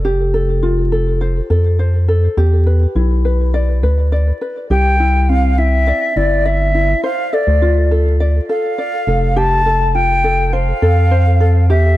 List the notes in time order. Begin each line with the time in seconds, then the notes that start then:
Already playing: F1 F4 A4 D5
0.05 G4
0.34 A4
0.63 F4
0.92 A4
1.21 C5
1.50 F2 A4
1.79 C5
2.08 A4
2.37 E2 G4
2.66 B4
2.95 B1 E4
3.25 B4
3.54 D5
3.83 D2 B4
4.12 D5
4.41 B4
4.70 C2 G4 G5
5.00 E4
5.29 C4 F5
5.58 E4 E5
5.87 D5
6.16 G1 E4 D5
6.46 D5 E5
6.75 E4
7.03 C5 F5
7.33 A4 D5
7.47 D2
7.62 F4
7.91 A4
8.20 D5
8.49 A4 F5
8.78 D5
9.07 F1 A4
9.36 G4 A5
9.66 A4
9.95 F4 G5
10.24 A4
10.53 C5 F5
10.82 F2 A4
11.11 C5
11.40 A4
11.69 E2 G4 E5